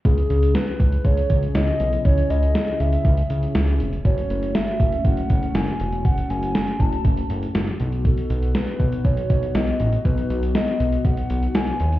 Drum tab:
HH |xxxxxxxxxxxxxxxx|xxxxxxxxxxxxxxxx|xxxxxxxxxxxxxxxx|xxxxxxxxxxxxxxxx|
SD |----o-------o---|----o-------o---|----o-------o---|----o-------o---|
BD |o-----o-o-o-----|o-------o-------|o-----o-o-o-----|o-----o-o-------|

HH |xxxxxxxxxxxxxxxx|xxxxxxxxxxxxxxxx|
SD |----o-------o---|----o-------o---|
BD |o-----o-o-o-----|o-------o-------|